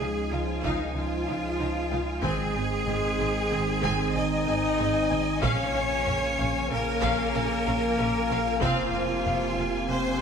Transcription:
Already playing: sub bass C#2, trombone section F3 D#4, french horn section G#3, analog synth pad G#3 C#4 F4 D#5, cello section G#4, violin section G#5
0.00 double bass section C#2, viola section D#4, violin section F5
0.32 double bass section C#2, french horn section F3, viola section D#4, cello section F4, violin section F5
0.64 double bass section C#2, viola section D#4, violin section F5, taiko
0.81 french horn section D#3, cello section D#4
0.96 double bass section C#2, french horn section F3, viola section D#4, cello section F4, violin section F5
1.27 double bass section C#2, viola section D#4, violin section F5
1.59 double bass section C#2, viola section D#4, violin section F5
1.91 double bass section C#2, viola section D#4, violin section F5
2.22 double bass section G#1, sub bass G#1, trombone section D#3 C4, analog synth pad G#3 C4 G#4, french horn section G#3, viola section C4, cello section G#4, violin section G#5, taiko
2.55 double bass section G#1, viola section C4, violin section G#5
2.87 double bass section G#1, viola section C4, violin section G#5, taiko low-mid
3.19 double bass section G#1, viola section C4, violin section G#5
3.51 double bass section G#1, viola section C4, violin section G#5
3.83 double bass section G#1, viola section C4, violin section G#5, taiko
4.15 double bass section G#1, viola section C4, french horn section D#4, cello section D#5, violin section G#5
4.47 double bass section G#1, viola section C4, violin section G#5
4.78 double bass section G#1, viola section C4, violin section G#5
5.10 double bass section G#1, viola section C4, violin section G#5
5.42 sub bass A#1, double bass section A#1, trombone section C#3 A#3, analog synth pad F3 C#4 F5, french horn section C#4, viola section C#4, cello section C#5, violin section F5, taiko
5.75 double bass section A#1, viola section C#4, violin section F5
6.06 double bass section A#1, viola section C#4, violin section F5, taiko low-mid
6.38 double bass section A#1, viola section C#4, violin section F5
6.69 double bass section A#1, french horn section A#3, viola section C#4, cello section A#4, violin section F5
7.02 double bass section A#1, viola section C#4, violin section F5, taiko
7.34 double bass section A#1, viola section C#4, violin section F5
7.66 double bass section A#1, viola section C#4, violin section F5
7.99 double bass section A#1, viola section C#4, violin section F5
8.30 double bass section A#1, viola section C#4, violin section F5
8.61 sub bass F1, double bass section F1, trombone section C3, french horn section F3, analog synth pad C4 F4, viola section C4, cello section F4, violin section F5 G#5, taiko, riser
8.93 double bass section F1, viola section C4, violin section F5
9.25 double bass section F1, viola section C4, violin section F5, taiko low-mid
9.57 double bass section F1, viola section C4, violin section F5
9.89 double bass section F1, french horn section C4, viola section C4, cello section C5, violin section F5

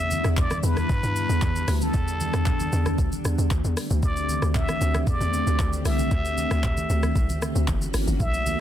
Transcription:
Already playing: log drum bass E2, string machine D3 G3 B3 E4, muted trumpet E5
0.11 high conga, shaker
0.24 log drum bass E2, cross-stick, shaker
0.37 muted trumpet D5, kick, clap, low conga, shaker
0.51 cross-stick, high conga, shaker
0.63 log drum bass E2, muted trumpet B4, shaker
0.77 cross-stick, high conga, shaker
0.89 log drum bass G2, kick, low conga, shaker
1.03 log drum bass G2, high conga, shaker
1.16 shaker
1.29 log drum bass E2, shaker
1.42 log drum bass E2, kick, clap, high conga, shaker
1.56 shaker
1.68 log drum bass D2, cross-stick, open hi-hat, shaker
1.81 muted trumpet A4, high conga, shaker
1.94 log drum bass E2, string machine D4, kick, low conga, shaker
2.08 shaker
2.20 high conga, shaker
2.34 log drum bass E2, cross-stick, shaker
2.46 kick, clap, low conga, shaker
2.60 high conga, shaker
2.73 log drum bass E2, shaker
2.86 cross-stick, high conga, shaker
2.98 log drum bass D2, kick, low conga, shaker
3.12 high conga, shaker
3.25 log drum bass E2, cross-stick, high conga, shaker
3.38 log drum bass E2, shaker
3.51 log drum bass D2, kick, clap, high conga, shaker
3.64 log drum bass E2, shaker
3.76 string machine A3 C4 G4, cross-stick, open hi-hat, shaker
3.90 log drum bass D2, high conga, shaker
4.03 log drum bass D2, muted trumpet D5, kick, low conga, shaker
4.17 shaker
4.29 high conga, shaker
4.42 log drum bass D2, cross-stick, shaker
4.55 muted trumpet E5, kick, clap, low conga, shaker
4.69 cross-stick, high conga, shaker
4.81 log drum bass D2, shaker
4.95 cross-stick, high conga, shaker
5.07 log drum bass E2, muted trumpet D5, kick, low conga, shaker
5.20 log drum bass E2, high conga, shaker
5.33 shaker
5.47 log drum bass D2, shaker
5.59 log drum bass D2, kick, clap, high conga, shaker
5.73 shaker
5.85 log drum bass C2, muted trumpet E5, cross-stick, open hi-hat, shaker
5.99 high conga, shaker
6.11 log drum bass D2, kick, low conga, shaker
6.25 shaker
6.38 high conga, shaker
6.51 log drum bass D2, cross-stick, shaker
6.64 kick, clap, low conga, shaker
6.77 high conga, shaker
6.90 log drum bass D2, shaker
7.03 cross-stick, high conga, shaker
7.16 log drum bass C2, kick, low conga, shaker
7.29 log drum bass D2, high conga, shaker
7.42 cross-stick, shaker
7.55 log drum bass D2, shaker
7.67 log drum bass F#1, string machine E3 A#3 C#4 F#4, kick, clap, high conga, shaker
7.82 shaker
7.94 log drum bass G1, cross-stick, open hi-hat, shaker
8.07 log drum bass G1, high conga, shaker
8.20 log drum bass B1, string machine D3 A3 B3 F#4, muted trumpet E5, kick, low conga, shaker
8.34 shaker
8.46 high conga, shaker

